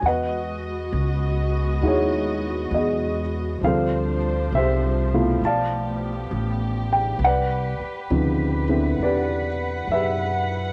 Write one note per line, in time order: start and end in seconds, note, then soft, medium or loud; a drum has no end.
0.02 0.90 E2 medium
0.02 3.60 G#3 medium
0.02 3.60 B3 medium
0.02 3.60 F#4 medium
0.02 3.60 D#5 medium
0.02 1.80 F#5 medium
0.07 1.81 B4 soft
0.07 1.81 D#5 medium
0.93 1.80 C#2 medium
1.82 2.70 D#2 medium
1.82 3.21 G#3 soft
1.82 3.21 D#4 soft
1.82 3.21 E4 soft
1.82 1.87 F#4 soft
1.87 2.74 F#4 soft
1.87 2.75 G#4 soft
1.87 2.77 C#5 medium
2.71 3.59 E2 medium
2.71 3.59 D#5 medium
2.75 3.60 F#4 soft
2.75 3.60 G#4 soft
3.60 4.49 D2 medium
3.60 7.15 F3 medium
3.60 4.17 F3 soft
3.60 5.39 G3 medium
3.60 4.17 G3 soft
3.60 5.39 D4 medium
3.60 5.39 C5 medium
3.64 4.17 C4 soft
3.64 4.18 F4 soft
3.64 5.40 A4 medium
3.64 4.56 C5 soft
3.64 4.56 F5 medium
4.52 5.39 C2 medium
4.52 5.39 E5 medium
4.56 5.40 G4 medium
4.56 5.40 C5 medium
5.14 5.40 B2 medium
5.14 5.40 A3 soft
5.14 5.40 E4 medium
5.14 5.40 F4 medium
5.40 6.28 B1 medium
5.40 7.18 A3 medium
5.40 7.18 B3 medium
5.40 8.94 G4 medium
5.45 7.18 D5 medium
5.45 7.18 F5 medium
5.45 6.97 A5 medium
6.31 7.18 A1 medium
6.93 7.19 G5 medium
7.19 7.75 C2 medium
7.19 10.73 B4 medium
7.24 8.98 B4 medium
7.24 8.98 D5 medium
7.24 9.06 F#5 medium
7.80 muted upright bass stroke soft
8.10 8.97 D2 medium
8.10 8.64 C#3 soft
8.10 8.64 F3 soft
8.10 8.64 C4 soft
8.10 8.63 D#4 soft
8.69 9.46 D3 medium
8.69 9.47 B3 soft
8.69 9.47 C4 soft
8.69 9.47 E4 medium
8.98 9.86 E2 medium
8.98 10.73 F#5 medium
9.03 9.92 G4 medium
9.03 9.92 B4 medium
9.03 9.86 D5 medium
9.87 10.73 F#2 medium
9.92 10.73 G4 soft
9.92 10.73 B4 soft
9.92 10.73 E5 medium